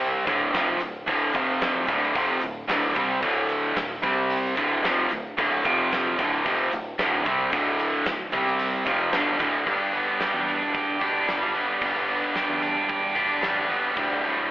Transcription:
Already playing: C2 C3 G3 C4
0.00 open hi-hat, shaker
0.26 D1 D2 A2 D3, kick, open hi-hat, shaker
0.40 shaker
0.53 F1 F2 C3 F3, snare, open hi-hat, shaker
0.79 D1 D2 A2, open hi-hat, shaker
0.93 shaker
1.06 D1 D2 A2 D3, kick, open hi-hat, shaker
1.33 F1 F2 C3 F3, kick, open hi-hat, shaker
1.60 snare, open hi-hat, shaker
1.87 D1 D2 A2 D3, kick, open hi-hat, shaker
2.03 snare
2.13 F1 F2 C3 F3, kick, open hi-hat, shaker
2.40 D1 D2 A2, open hi-hat, shaker
2.68 D1 D2 A2 D3, snare, open hi-hat, shaker
2.94 C2 C3 G3 C4, kick, open hi-hat, shaker
3.08 shaker
3.22 D1 D2 A2 D3, kick, open hi-hat, shaker
3.48 open hi-hat, shaker
3.76 D1 D2 A2, snare, open hi-hat, shaker
4.02 C2 C3 G3 C4, kick, open hi-hat, shaker
4.29 open hi-hat, shaker
4.56 D1 D2 A2 D3, kick, open hi-hat, shaker
4.83 F1 F2 C3 F3, snare, open hi-hat, shaker
5.09 D1 D2 A2, open hi-hat, shaker
5.24 shaker
5.37 D1 D2 A2 D3, kick, open hi-hat, shaker
5.64 F1 F2 C3 F3, kick, open hi-hat, shaker
5.90 snare, open hi-hat, shaker
6.18 D1 D2 A2 D3, kick, open hi-hat, shaker
6.45 F1 F2 C3 F3, kick, open hi-hat, shaker
6.72 D1 D2 A2, open hi-hat, shaker
6.98 D1 D2 A2 D3, snare, open hi-hat, shaker
7.25 C2 C3 G3 C4, kick, open hi-hat, shaker
7.38 shaker
7.51 D1 D2 A2 D3, kick, open hi-hat, shaker
7.79 open hi-hat, shaker
7.92 shaker
8.06 D1 D2 A2, snare, open hi-hat, shaker
8.32 C2 C3 G3 C4, kick, open hi-hat, shaker
8.46 snare, shaker
8.59 open hi-hat, shaker
8.86 F1 F2 C3 F3, kick, open hi-hat, shaker
8.99 shaker
9.13 G1 G2 D3 G3, snare, open hi-hat, shaker
9.39 D1 D2 A2 D3, kick, open hi-hat, shaker
9.53 shaker
9.65 G1 G2 D3 G3 B3 D4 G4, kick, open hi-hat
9.80 G1
9.93 B3, open hi-hat
10.19 G4, snare, open hi-hat
10.34 E2
10.47 D4, open hi-hat
10.61 E1
10.73 G4, kick, open hi-hat
10.99 D3 G3 B3 D4 G4, kick, open hi-hat
11.03 G2
11.27 G1 G2 D3 G3 B3 D4, snare, open hi-hat
11.31 G4
11.55 B3, open hi-hat
11.81 G1 G2 D3 G3 B3 D4 G4, kick, open hi-hat
11.95 G1
12.08 B3, open hi-hat
12.35 G4, snare, open hi-hat
12.50 E2
12.62 D4, open hi-hat
12.76 E1
12.89 G4, kick, open hi-hat
13.15 G2 D3 G3 B3 D4 G4, kick, open hi-hat
13.42 A1 G2 D3 G3 B3 D4 G4, snare, open hi-hat
13.69 B3, open hi-hat
13.96 D1 D2 A2 D3 G3, kick, open hi-hat
14.11 D1
14.24 A2, open hi-hat

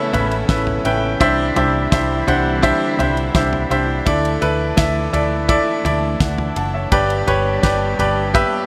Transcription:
Already playing: A2 C#3 E3 A3 B3 C#4 E4 A4 B4 E5 F#5
0.13 A1 C#4 E4 A4 B4 E5, floor tom, ride
0.31 ride
0.48 A1 C#4 E4 A4 B4 E5, kick, snare, ride
0.67 floor tom
0.85 A1 C#4 E4 A4 B4 G5, ride
1.20 C2 C3 D3 G3 C4 D4 E4 G4 C5 E5, kick, ride
1.56 C2 D4 E4 G4 C5 E5, floor tom, ride
1.91 C2 D4 E4 G4 C5 E5, kick, snare, ride
2.27 C2 D4 E4 G4 C5 F#5, floor tom, ride
2.62 D4 E4 G4 C5 E5, kick, ride
2.98 C2 D4 E4 G4 C5 E5, floor tom, ride
3.17 ride
3.35 C2 D4 E4 G4 C5 E5, kick, snare, ride
3.53 floor tom
3.70 C2 D4 E4 G4 C5 E5, ride
4.06 D2 D3 A3 D4 E4 A4 D5, kick, ride
4.25 ride
4.41 D2 E4 A4 B4, ride
4.77 D2 E4 A4 E5, kick, snare, ride
5.13 D2 E4 A4 D5, floor tom, ride
5.48 E4 A4 D5, kick, ride
5.85 D2 E4 A4 D5, floor tom, ride
6.20 D2 D5 F#5, kick, snare, ride
6.38 floor tom
6.56 F#1 F#5 A5, ride
6.74 C#5 E5
6.92 G1 G2 G3 B3 G4 B4 D5, kick, ride
7.10 ride
7.27 G1 G4 B4 C#5, floor tom, ride
7.63 G1 G4 B4 D5, kick, snare, ride
7.99 G1 G4 B4 D5, floor tom, ride
8.34 G4 B4 E5, kick, ride

